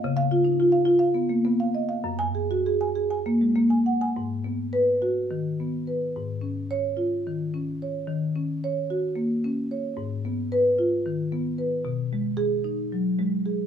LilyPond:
\new Staff \with { instrumentName = "Marimba" } { \time 7/8 \key gis \dorian \tempo 4 = 108 << { r16 eis''8 r2 r8. | r16 gis''8 r2 r8. | r4 b'8. r4. r16 | r4 cis''8. r4. r16 |
r4 cis''8. r4. r16 | r4 b'8. r4. r16 | r4 gis'8. r4. r16 | } \\ { cis8 eis'16 dis'16 eis'16 eis''16 eis'16 eis''16 b16 ais16 b16 eis''16 dis''16 eis''16 | fis,8 gis'16 fis'16 gis'16 gis''16 gis'16 gis''16 ais16 gis16 ais16 gis''16 fis''16 gis''16 | gis,8 b8. r16 fis'8 dis8 b8 b'8 | gis,8 cis'8. r16 eis'8 dis8 cis'8 cis''8 |
dis8 cis'8. r16 fis'8 ais8 cis'8 cis''8 | gis,8 b8. r16 eis'8 dis8 b8 b'8 | b,8 gis8. r16 dis'8 fis8 gis8 gis'8 | } >> }